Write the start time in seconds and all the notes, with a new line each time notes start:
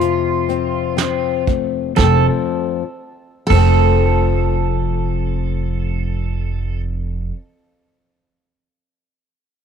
Already playing: F2 F3 A3 F4
0.01 C3, closed hi-hat
0.49 C4, closed hi-hat
0.97 C4, snare, closed hi-hat
1.47 A3, kick, closed hi-hat
1.96 F1 F2 F3 A4, kick, snare
2.01 A3 C4
2.05 A4
3.47 F1 A4, kick
3.51 F2 F3 A3, crash
3.57 C4 A4